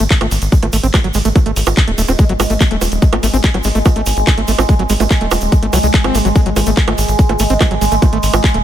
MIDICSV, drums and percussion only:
0, 0, Header, 1, 2, 480
1, 0, Start_track
1, 0, Tempo, 416667
1, 1561, Time_signature, 4, 2, 24, 8
1, 9950, End_track
2, 0, Start_track
2, 0, Title_t, "Drums"
2, 1, Note_on_c, 9, 42, 67
2, 116, Note_off_c, 9, 42, 0
2, 121, Note_on_c, 9, 36, 118
2, 121, Note_on_c, 9, 39, 124
2, 121, Note_on_c, 9, 42, 70
2, 128, Note_on_c, 9, 82, 41
2, 236, Note_off_c, 9, 36, 0
2, 236, Note_off_c, 9, 39, 0
2, 236, Note_off_c, 9, 42, 0
2, 241, Note_on_c, 9, 42, 66
2, 241, Note_on_c, 9, 60, 73
2, 244, Note_off_c, 9, 82, 0
2, 356, Note_off_c, 9, 42, 0
2, 356, Note_off_c, 9, 60, 0
2, 361, Note_on_c, 9, 46, 96
2, 361, Note_on_c, 9, 82, 88
2, 476, Note_off_c, 9, 46, 0
2, 476, Note_off_c, 9, 82, 0
2, 479, Note_on_c, 9, 82, 50
2, 481, Note_on_c, 9, 42, 71
2, 594, Note_off_c, 9, 82, 0
2, 596, Note_off_c, 9, 42, 0
2, 601, Note_on_c, 9, 36, 116
2, 601, Note_on_c, 9, 42, 68
2, 606, Note_on_c, 9, 82, 43
2, 716, Note_off_c, 9, 36, 0
2, 716, Note_off_c, 9, 42, 0
2, 721, Note_off_c, 9, 82, 0
2, 721, Note_on_c, 9, 42, 69
2, 721, Note_on_c, 9, 60, 39
2, 836, Note_off_c, 9, 42, 0
2, 836, Note_off_c, 9, 60, 0
2, 838, Note_on_c, 9, 82, 91
2, 840, Note_on_c, 9, 46, 112
2, 953, Note_off_c, 9, 82, 0
2, 956, Note_off_c, 9, 46, 0
2, 961, Note_on_c, 9, 42, 69
2, 965, Note_on_c, 9, 82, 50
2, 1076, Note_off_c, 9, 42, 0
2, 1080, Note_off_c, 9, 82, 0
2, 1081, Note_on_c, 9, 36, 123
2, 1081, Note_on_c, 9, 39, 127
2, 1081, Note_on_c, 9, 42, 71
2, 1081, Note_on_c, 9, 60, 77
2, 1084, Note_on_c, 9, 82, 41
2, 1196, Note_off_c, 9, 36, 0
2, 1196, Note_off_c, 9, 39, 0
2, 1196, Note_off_c, 9, 42, 0
2, 1196, Note_off_c, 9, 60, 0
2, 1199, Note_off_c, 9, 82, 0
2, 1201, Note_on_c, 9, 42, 68
2, 1312, Note_on_c, 9, 82, 98
2, 1316, Note_off_c, 9, 42, 0
2, 1321, Note_on_c, 9, 46, 93
2, 1427, Note_off_c, 9, 82, 0
2, 1434, Note_on_c, 9, 82, 47
2, 1436, Note_off_c, 9, 46, 0
2, 1441, Note_on_c, 9, 42, 69
2, 1549, Note_off_c, 9, 82, 0
2, 1556, Note_off_c, 9, 42, 0
2, 1561, Note_on_c, 9, 36, 127
2, 1561, Note_on_c, 9, 42, 69
2, 1561, Note_on_c, 9, 60, 37
2, 1565, Note_on_c, 9, 82, 40
2, 1676, Note_off_c, 9, 36, 0
2, 1676, Note_off_c, 9, 42, 0
2, 1676, Note_off_c, 9, 60, 0
2, 1680, Note_off_c, 9, 82, 0
2, 1681, Note_on_c, 9, 42, 64
2, 1796, Note_off_c, 9, 42, 0
2, 1801, Note_on_c, 9, 46, 111
2, 1804, Note_on_c, 9, 82, 91
2, 1915, Note_off_c, 9, 82, 0
2, 1915, Note_on_c, 9, 82, 59
2, 1916, Note_off_c, 9, 46, 0
2, 1921, Note_on_c, 9, 42, 66
2, 1921, Note_on_c, 9, 60, 74
2, 2030, Note_off_c, 9, 82, 0
2, 2036, Note_off_c, 9, 42, 0
2, 2036, Note_off_c, 9, 60, 0
2, 2041, Note_on_c, 9, 36, 127
2, 2041, Note_on_c, 9, 39, 121
2, 2041, Note_on_c, 9, 42, 66
2, 2042, Note_on_c, 9, 82, 43
2, 2156, Note_off_c, 9, 36, 0
2, 2156, Note_off_c, 9, 39, 0
2, 2156, Note_off_c, 9, 42, 0
2, 2157, Note_off_c, 9, 82, 0
2, 2161, Note_on_c, 9, 42, 65
2, 2276, Note_off_c, 9, 42, 0
2, 2281, Note_on_c, 9, 46, 100
2, 2284, Note_on_c, 9, 82, 104
2, 2396, Note_off_c, 9, 46, 0
2, 2397, Note_off_c, 9, 82, 0
2, 2397, Note_on_c, 9, 82, 61
2, 2401, Note_on_c, 9, 42, 67
2, 2401, Note_on_c, 9, 60, 40
2, 2512, Note_off_c, 9, 82, 0
2, 2516, Note_off_c, 9, 42, 0
2, 2516, Note_off_c, 9, 60, 0
2, 2520, Note_on_c, 9, 82, 44
2, 2521, Note_on_c, 9, 36, 124
2, 2521, Note_on_c, 9, 42, 69
2, 2635, Note_off_c, 9, 82, 0
2, 2636, Note_off_c, 9, 36, 0
2, 2636, Note_off_c, 9, 42, 0
2, 2641, Note_on_c, 9, 42, 72
2, 2756, Note_off_c, 9, 42, 0
2, 2761, Note_on_c, 9, 46, 112
2, 2761, Note_on_c, 9, 60, 80
2, 2765, Note_on_c, 9, 82, 97
2, 2876, Note_off_c, 9, 46, 0
2, 2876, Note_off_c, 9, 60, 0
2, 2880, Note_off_c, 9, 82, 0
2, 2881, Note_on_c, 9, 42, 65
2, 2883, Note_on_c, 9, 82, 58
2, 2996, Note_off_c, 9, 42, 0
2, 2998, Note_off_c, 9, 82, 0
2, 3001, Note_on_c, 9, 36, 127
2, 3001, Note_on_c, 9, 39, 127
2, 3001, Note_on_c, 9, 42, 73
2, 3001, Note_on_c, 9, 82, 43
2, 3116, Note_off_c, 9, 36, 0
2, 3116, Note_off_c, 9, 39, 0
2, 3116, Note_off_c, 9, 42, 0
2, 3116, Note_off_c, 9, 82, 0
2, 3121, Note_on_c, 9, 42, 64
2, 3236, Note_off_c, 9, 42, 0
2, 3240, Note_on_c, 9, 82, 90
2, 3241, Note_on_c, 9, 46, 98
2, 3241, Note_on_c, 9, 60, 39
2, 3356, Note_off_c, 9, 46, 0
2, 3356, Note_off_c, 9, 60, 0
2, 3356, Note_off_c, 9, 82, 0
2, 3361, Note_on_c, 9, 42, 67
2, 3363, Note_on_c, 9, 82, 51
2, 3476, Note_off_c, 9, 42, 0
2, 3479, Note_off_c, 9, 82, 0
2, 3480, Note_on_c, 9, 82, 43
2, 3481, Note_on_c, 9, 36, 127
2, 3481, Note_on_c, 9, 42, 62
2, 3595, Note_off_c, 9, 82, 0
2, 3596, Note_off_c, 9, 36, 0
2, 3596, Note_off_c, 9, 42, 0
2, 3601, Note_on_c, 9, 42, 66
2, 3601, Note_on_c, 9, 60, 79
2, 3716, Note_off_c, 9, 42, 0
2, 3716, Note_off_c, 9, 60, 0
2, 3721, Note_on_c, 9, 46, 107
2, 3725, Note_on_c, 9, 82, 90
2, 3836, Note_off_c, 9, 46, 0
2, 3840, Note_off_c, 9, 82, 0
2, 3841, Note_on_c, 9, 42, 59
2, 3844, Note_on_c, 9, 82, 57
2, 3955, Note_off_c, 9, 82, 0
2, 3955, Note_on_c, 9, 82, 39
2, 3957, Note_off_c, 9, 42, 0
2, 3961, Note_on_c, 9, 36, 121
2, 3961, Note_on_c, 9, 39, 124
2, 3961, Note_on_c, 9, 42, 63
2, 4070, Note_off_c, 9, 82, 0
2, 4076, Note_off_c, 9, 36, 0
2, 4076, Note_off_c, 9, 39, 0
2, 4076, Note_off_c, 9, 42, 0
2, 4081, Note_on_c, 9, 42, 65
2, 4081, Note_on_c, 9, 60, 37
2, 4187, Note_on_c, 9, 82, 94
2, 4197, Note_off_c, 9, 42, 0
2, 4197, Note_off_c, 9, 60, 0
2, 4201, Note_on_c, 9, 46, 96
2, 4302, Note_off_c, 9, 82, 0
2, 4317, Note_off_c, 9, 46, 0
2, 4321, Note_on_c, 9, 42, 66
2, 4324, Note_on_c, 9, 82, 52
2, 4436, Note_off_c, 9, 42, 0
2, 4438, Note_off_c, 9, 82, 0
2, 4438, Note_on_c, 9, 82, 46
2, 4441, Note_on_c, 9, 36, 127
2, 4441, Note_on_c, 9, 42, 64
2, 4441, Note_on_c, 9, 60, 82
2, 4553, Note_off_c, 9, 82, 0
2, 4556, Note_off_c, 9, 36, 0
2, 4556, Note_off_c, 9, 42, 0
2, 4556, Note_off_c, 9, 60, 0
2, 4561, Note_on_c, 9, 42, 68
2, 4676, Note_off_c, 9, 42, 0
2, 4680, Note_on_c, 9, 82, 101
2, 4681, Note_on_c, 9, 46, 112
2, 4795, Note_off_c, 9, 82, 0
2, 4796, Note_off_c, 9, 46, 0
2, 4801, Note_on_c, 9, 42, 63
2, 4802, Note_on_c, 9, 82, 54
2, 4916, Note_off_c, 9, 42, 0
2, 4917, Note_off_c, 9, 82, 0
2, 4921, Note_on_c, 9, 36, 127
2, 4921, Note_on_c, 9, 39, 124
2, 4921, Note_on_c, 9, 42, 68
2, 4921, Note_on_c, 9, 60, 40
2, 4927, Note_on_c, 9, 82, 45
2, 5036, Note_off_c, 9, 36, 0
2, 5036, Note_off_c, 9, 39, 0
2, 5036, Note_off_c, 9, 42, 0
2, 5036, Note_off_c, 9, 60, 0
2, 5041, Note_on_c, 9, 42, 64
2, 5042, Note_off_c, 9, 82, 0
2, 5156, Note_off_c, 9, 42, 0
2, 5158, Note_on_c, 9, 82, 93
2, 5161, Note_on_c, 9, 46, 103
2, 5273, Note_off_c, 9, 82, 0
2, 5276, Note_off_c, 9, 46, 0
2, 5281, Note_on_c, 9, 42, 65
2, 5281, Note_on_c, 9, 60, 78
2, 5290, Note_on_c, 9, 82, 53
2, 5396, Note_off_c, 9, 42, 0
2, 5396, Note_off_c, 9, 60, 0
2, 5401, Note_on_c, 9, 36, 127
2, 5401, Note_on_c, 9, 42, 63
2, 5405, Note_off_c, 9, 82, 0
2, 5405, Note_on_c, 9, 82, 38
2, 5516, Note_off_c, 9, 36, 0
2, 5516, Note_off_c, 9, 42, 0
2, 5520, Note_off_c, 9, 82, 0
2, 5521, Note_on_c, 9, 42, 64
2, 5636, Note_off_c, 9, 42, 0
2, 5637, Note_on_c, 9, 82, 96
2, 5641, Note_on_c, 9, 46, 106
2, 5753, Note_off_c, 9, 82, 0
2, 5756, Note_off_c, 9, 46, 0
2, 5761, Note_on_c, 9, 42, 60
2, 5761, Note_on_c, 9, 60, 40
2, 5763, Note_on_c, 9, 82, 59
2, 5876, Note_off_c, 9, 42, 0
2, 5876, Note_off_c, 9, 60, 0
2, 5879, Note_off_c, 9, 82, 0
2, 5881, Note_on_c, 9, 36, 124
2, 5881, Note_on_c, 9, 39, 114
2, 5881, Note_on_c, 9, 42, 62
2, 5886, Note_on_c, 9, 82, 44
2, 5996, Note_off_c, 9, 36, 0
2, 5996, Note_off_c, 9, 39, 0
2, 5996, Note_off_c, 9, 42, 0
2, 6001, Note_on_c, 9, 42, 63
2, 6002, Note_off_c, 9, 82, 0
2, 6116, Note_off_c, 9, 42, 0
2, 6117, Note_on_c, 9, 82, 97
2, 6121, Note_on_c, 9, 46, 100
2, 6121, Note_on_c, 9, 60, 84
2, 6231, Note_off_c, 9, 82, 0
2, 6231, Note_on_c, 9, 82, 54
2, 6236, Note_off_c, 9, 46, 0
2, 6236, Note_off_c, 9, 60, 0
2, 6241, Note_on_c, 9, 42, 64
2, 6346, Note_off_c, 9, 82, 0
2, 6356, Note_off_c, 9, 42, 0
2, 6359, Note_on_c, 9, 82, 41
2, 6361, Note_on_c, 9, 36, 117
2, 6361, Note_on_c, 9, 42, 64
2, 6474, Note_off_c, 9, 82, 0
2, 6476, Note_off_c, 9, 36, 0
2, 6476, Note_off_c, 9, 42, 0
2, 6481, Note_on_c, 9, 42, 67
2, 6596, Note_off_c, 9, 42, 0
2, 6601, Note_on_c, 9, 46, 115
2, 6601, Note_on_c, 9, 60, 39
2, 6603, Note_on_c, 9, 82, 98
2, 6716, Note_off_c, 9, 46, 0
2, 6716, Note_off_c, 9, 60, 0
2, 6718, Note_off_c, 9, 82, 0
2, 6721, Note_on_c, 9, 42, 62
2, 6722, Note_on_c, 9, 82, 57
2, 6836, Note_off_c, 9, 42, 0
2, 6837, Note_off_c, 9, 82, 0
2, 6841, Note_on_c, 9, 36, 127
2, 6841, Note_on_c, 9, 39, 124
2, 6841, Note_on_c, 9, 42, 66
2, 6956, Note_off_c, 9, 36, 0
2, 6956, Note_off_c, 9, 39, 0
2, 6956, Note_off_c, 9, 42, 0
2, 6961, Note_on_c, 9, 42, 61
2, 6961, Note_on_c, 9, 60, 81
2, 7076, Note_off_c, 9, 42, 0
2, 7076, Note_off_c, 9, 60, 0
2, 7081, Note_on_c, 9, 46, 101
2, 7082, Note_on_c, 9, 82, 86
2, 7196, Note_off_c, 9, 46, 0
2, 7197, Note_off_c, 9, 82, 0
2, 7201, Note_on_c, 9, 42, 62
2, 7207, Note_on_c, 9, 82, 47
2, 7316, Note_off_c, 9, 42, 0
2, 7319, Note_off_c, 9, 82, 0
2, 7319, Note_on_c, 9, 82, 38
2, 7321, Note_on_c, 9, 36, 127
2, 7321, Note_on_c, 9, 42, 64
2, 7434, Note_off_c, 9, 82, 0
2, 7436, Note_off_c, 9, 36, 0
2, 7436, Note_off_c, 9, 42, 0
2, 7441, Note_on_c, 9, 42, 64
2, 7556, Note_off_c, 9, 42, 0
2, 7561, Note_on_c, 9, 46, 107
2, 7561, Note_on_c, 9, 60, 41
2, 7562, Note_on_c, 9, 82, 94
2, 7672, Note_off_c, 9, 82, 0
2, 7672, Note_on_c, 9, 82, 55
2, 7676, Note_off_c, 9, 46, 0
2, 7676, Note_off_c, 9, 60, 0
2, 7681, Note_on_c, 9, 42, 62
2, 7787, Note_off_c, 9, 82, 0
2, 7796, Note_off_c, 9, 42, 0
2, 7801, Note_on_c, 9, 36, 123
2, 7801, Note_on_c, 9, 39, 111
2, 7801, Note_on_c, 9, 42, 61
2, 7916, Note_off_c, 9, 36, 0
2, 7916, Note_off_c, 9, 39, 0
2, 7916, Note_off_c, 9, 42, 0
2, 7921, Note_on_c, 9, 42, 64
2, 7921, Note_on_c, 9, 60, 83
2, 8036, Note_off_c, 9, 42, 0
2, 8036, Note_off_c, 9, 60, 0
2, 8041, Note_on_c, 9, 46, 93
2, 8043, Note_on_c, 9, 82, 87
2, 8156, Note_off_c, 9, 46, 0
2, 8158, Note_off_c, 9, 82, 0
2, 8161, Note_on_c, 9, 42, 67
2, 8162, Note_on_c, 9, 82, 51
2, 8276, Note_off_c, 9, 42, 0
2, 8277, Note_off_c, 9, 82, 0
2, 8281, Note_on_c, 9, 36, 118
2, 8281, Note_on_c, 9, 42, 63
2, 8283, Note_on_c, 9, 82, 45
2, 8396, Note_off_c, 9, 36, 0
2, 8397, Note_off_c, 9, 42, 0
2, 8399, Note_off_c, 9, 82, 0
2, 8402, Note_on_c, 9, 42, 69
2, 8402, Note_on_c, 9, 60, 45
2, 8514, Note_on_c, 9, 82, 91
2, 8517, Note_off_c, 9, 42, 0
2, 8517, Note_off_c, 9, 60, 0
2, 8521, Note_on_c, 9, 46, 105
2, 8629, Note_off_c, 9, 82, 0
2, 8633, Note_on_c, 9, 82, 54
2, 8636, Note_off_c, 9, 46, 0
2, 8641, Note_on_c, 9, 42, 66
2, 8748, Note_off_c, 9, 82, 0
2, 8756, Note_off_c, 9, 42, 0
2, 8761, Note_on_c, 9, 36, 121
2, 8761, Note_on_c, 9, 39, 120
2, 8761, Note_on_c, 9, 42, 67
2, 8761, Note_on_c, 9, 60, 88
2, 8765, Note_on_c, 9, 82, 38
2, 8876, Note_off_c, 9, 36, 0
2, 8876, Note_off_c, 9, 39, 0
2, 8876, Note_off_c, 9, 42, 0
2, 8876, Note_off_c, 9, 60, 0
2, 8881, Note_off_c, 9, 82, 0
2, 8881, Note_on_c, 9, 42, 61
2, 8997, Note_off_c, 9, 42, 0
2, 9001, Note_on_c, 9, 46, 101
2, 9007, Note_on_c, 9, 82, 97
2, 9116, Note_off_c, 9, 82, 0
2, 9116, Note_on_c, 9, 82, 49
2, 9117, Note_off_c, 9, 46, 0
2, 9122, Note_on_c, 9, 42, 67
2, 9232, Note_off_c, 9, 82, 0
2, 9237, Note_off_c, 9, 42, 0
2, 9241, Note_on_c, 9, 36, 117
2, 9241, Note_on_c, 9, 42, 67
2, 9241, Note_on_c, 9, 60, 41
2, 9241, Note_on_c, 9, 82, 38
2, 9356, Note_off_c, 9, 36, 0
2, 9356, Note_off_c, 9, 82, 0
2, 9357, Note_off_c, 9, 42, 0
2, 9357, Note_off_c, 9, 60, 0
2, 9361, Note_on_c, 9, 42, 66
2, 9476, Note_off_c, 9, 42, 0
2, 9481, Note_on_c, 9, 46, 102
2, 9483, Note_on_c, 9, 82, 80
2, 9596, Note_off_c, 9, 46, 0
2, 9598, Note_off_c, 9, 82, 0
2, 9599, Note_on_c, 9, 82, 48
2, 9601, Note_on_c, 9, 42, 63
2, 9601, Note_on_c, 9, 60, 81
2, 9714, Note_off_c, 9, 82, 0
2, 9716, Note_off_c, 9, 42, 0
2, 9716, Note_off_c, 9, 60, 0
2, 9721, Note_on_c, 9, 36, 121
2, 9721, Note_on_c, 9, 39, 115
2, 9721, Note_on_c, 9, 42, 63
2, 9734, Note_on_c, 9, 82, 38
2, 9836, Note_off_c, 9, 36, 0
2, 9836, Note_off_c, 9, 39, 0
2, 9836, Note_off_c, 9, 42, 0
2, 9841, Note_on_c, 9, 42, 66
2, 9849, Note_off_c, 9, 82, 0
2, 9950, Note_off_c, 9, 42, 0
2, 9950, End_track
0, 0, End_of_file